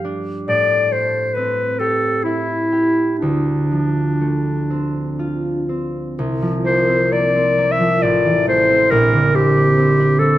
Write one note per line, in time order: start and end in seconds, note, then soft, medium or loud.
0.00 0.51 G2 soft
0.00 0.51 F3 soft
0.00 0.91 A3 soft
0.00 0.51 F4 soft
0.00 1.79 G4 soft
0.05 0.52 D4 soft
0.47 3.24 A2 soft
0.47 0.94 D5 medium
0.92 4.20 A3 soft
0.92 1.36 C5 medium
1.34 4.69 C4 soft
1.34 1.81 B4 medium
1.79 2.71 G4 soft
1.79 2.25 A4 medium
2.24 3.18 E4 medium
2.24 3.25 E4 soft
2.72 3.25 G4 soft
3.18 6.24 D2 soft
3.18 5.65 D4 soft
3.71 6.41 F3 soft
4.21 6.23 A3 soft
4.70 5.68 C4 soft
5.19 8.07 F4 soft
5.69 6.87 C4 soft
6.19 8.07 C2 medium
6.42 7.79 F3 soft
6.65 7.11 A#3 soft
6.65 7.14 C5 medium
6.88 7.34 C4 soft
7.12 7.57 A#3 soft
7.12 7.73 D5 medium
7.36 8.68 C4 soft
7.58 8.07 A#3 soft
7.72 8.04 E5 medium
7.80 8.06 F3 soft
8.03 8.95 A1 soft
8.03 8.47 D5 medium
8.26 8.95 E3 soft
8.47 8.95 A3 soft
8.47 8.93 C5 medium
8.69 9.34 C4 soft
8.91 10.38 A#1 medium
8.91 9.37 A#4 medium
9.13 10.38 D3 soft
9.35 9.76 C4 soft
9.35 10.21 G4 medium
9.57 9.99 D4 soft
9.78 10.20 C4 soft
10.00 10.38 D4 soft
10.19 10.38 C4 soft
10.19 10.38 A4 medium